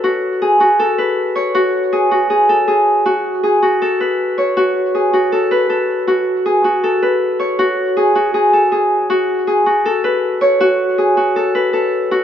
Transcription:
0.00 0.60 F#4 medium
0.00 0.48 A4 medium
0.00 0.98 B4 medium
0.00 0.25 C#5 medium
0.42 0.85 G#4 medium
0.60 1.54 F#4 medium
0.79 1.99 A4 medium
0.98 3.03 B4 medium
1.36 3.27 C#5 medium
1.55 2.11 F#4 loud
1.93 2.30 G#4 medium
2.11 3.05 F#4 medium
2.30 2.55 G#4 medium
2.49 2.74 A4 medium
2.68 3.43 G#4 medium
3.06 3.62 F#4 medium
3.43 3.88 G#4 medium
3.62 4.56 F#4 medium
3.82 5.01 A4 medium
4.00 5.51 B4 medium
4.38 6.29 C#5 medium
4.57 5.13 F#4 loud
4.95 5.38 G#4 medium
5.13 6.07 F#4 medium
5.32 5.69 A4 medium
5.51 7.02 B4 medium
5.70 6.52 A4 medium
6.07 6.64 F#4 medium
6.46 6.90 G#4 medium
6.64 7.58 F#4 medium
6.84 8.03 A4 medium
7.02 9.07 B4 medium
7.40 9.31 C#5 medium
7.59 8.15 F#4 loud
7.97 8.34 G#4 medium
8.15 9.09 F#4 medium
8.34 8.59 G#4 medium
8.53 8.78 A4 medium
8.72 9.47 G#4 medium
9.10 9.66 F#4 loud
9.47 9.91 G#4 medium
9.66 10.60 F#4 medium
9.85 11.04 A4 medium
10.04 11.54 B4 medium
10.41 12.24 C#5 medium
10.60 11.17 F#4 loud
10.98 11.42 G#4 medium
11.17 12.11 F#4 medium
11.36 11.73 A4 medium
11.55 12.24 B4 medium
11.73 12.24 A4 medium
12.11 12.24 F#4 medium

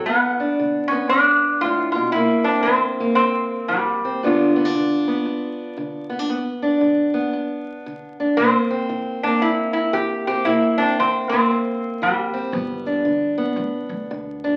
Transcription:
0.06 0.54 G2 medium
0.06 0.93 B3 medium
0.06 0.91 B3 medium
0.40 2.13 D4 medium
0.59 1.07 D3 medium
0.88 1.09 C#4 medium
0.92 2.13 B3 medium
1.09 1.59 G2 medium
1.09 1.63 D4 medium
1.61 1.95 A2 medium
1.61 1.91 F4 medium
1.92 2.14 B2 medium
1.92 2.12 F4 medium
2.12 2.63 C3 medium
2.12 2.99 A#3 medium
2.12 2.43 E4 loud
2.44 4.03 C4 medium
2.44 2.66 D4 medium
2.63 3.14 C4 medium
2.67 3.15 E3 medium
3.00 4.21 A#3 medium
3.15 3.71 C4 medium
3.19 3.67 G2 medium
3.68 4.19 E3 medium
3.68 4.70 G3 medium
4.05 4.21 C4 medium
4.23 4.71 G2 medium
4.23 4.74 D3 medium
4.23 4.56 B3 medium
4.23 4.55 D4 medium
4.23 6.30 F4 medium
4.56 4.65 B3 medium
4.65 6.09 D4 soft
4.75 5.23 D3 medium
5.08 6.08 B3 medium
5.26 5.74 G2 medium
5.77 6.26 D3 medium
6.09 6.19 B3 medium
6.19 6.30 D4 soft
6.29 6.78 G2 medium
6.29 7.13 B3 medium
6.62 8.19 D4 medium
6.81 7.30 D3 medium
7.14 8.36 B3 medium
7.33 7.82 G2 medium
7.86 8.35 D3 medium
8.20 8.37 D4 medium
8.37 8.86 C3 medium
8.37 9.23 A#3 medium
8.37 9.24 C4 medium
8.71 10.26 C4 medium
8.89 9.38 E3 medium
9.23 10.44 A#3 medium
9.23 9.43 D4 medium
9.42 9.90 G2 medium
9.42 9.72 E4 loud
9.73 9.94 E4 medium
9.93 10.42 E3 medium
9.93 10.24 G4 medium
10.27 10.44 C4 medium
10.27 10.47 G4 medium
10.45 10.94 C3 medium
10.45 11.30 A#3 medium
10.45 10.79 E4 medium
10.78 12.32 C4 medium
10.78 10.96 D4 medium
10.99 11.47 E3 medium
10.99 11.28 C4 medium
11.29 12.53 A#3 medium
11.29 12.04 C4 medium
11.51 11.98 G2 medium
12.02 12.50 E3 medium
12.02 13.02 G3 medium
12.34 12.51 C4 medium
12.52 13.45 G1 loud
12.52 13.01 G2 medium
12.52 13.37 B3 medium
12.86 14.44 D4 medium
13.05 13.53 D3 medium
13.38 14.56 B3 medium
13.56 13.71 D2 medium
13.56 14.05 G2 medium
13.89 14.53 D2 medium
14.11 14.56 D3 medium
14.44 14.56 D4 medium

